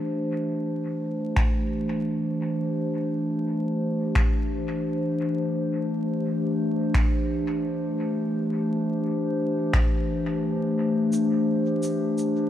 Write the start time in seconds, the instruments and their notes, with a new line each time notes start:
Already playing: ambient pad E3 A3 D4 G4 C5
1.36 finger snap, kick
4.15 finger snap, kick
6.94 finger snap, kick
9.73 finger snap, kick
11.13 cabasa
11.83 cabasa
12.18 cabasa